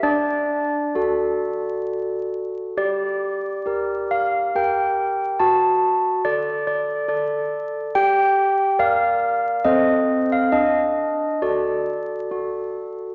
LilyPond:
\new Staff \with { instrumentName = "Handbells" } { \time 3/4 \key g \minor \tempo 4 = 68 << { d''2~ d''8 r8 | d''4. f''8 g''4 | a''4 d''8 d''4 r8 | g''4 f''4 ees''8. f''16 |
ees''4 d''4. r8 | } \\ { d'4 <fis' a'>2 | g'4 <g' bes'>4 <g' bes'>4 | fis'4 a'4 <a' d''>4 | g'4 <bes' d''>4 <c' a' c''>4 |
d'4 <fis' a'>4 <fis' a'>4 | } >> }